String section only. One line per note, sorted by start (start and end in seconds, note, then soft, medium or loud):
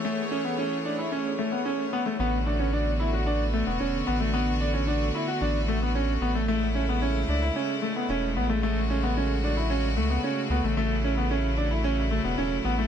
0.00 2.16 E3 medium
0.00 2.16 A3 medium
0.00 2.16 G#4 medium
0.00 2.16 C#5 medium
2.20 6.45 D3 medium
2.20 12.87 A3 medium
2.20 6.45 B3 medium
2.20 6.45 F#4 medium
6.49 12.87 C#3 medium
6.49 10.73 G#3 medium
6.49 8.61 E4 medium
8.62 10.74 F#4 medium
10.77 12.87 F#3 medium
10.77 12.87 E4 medium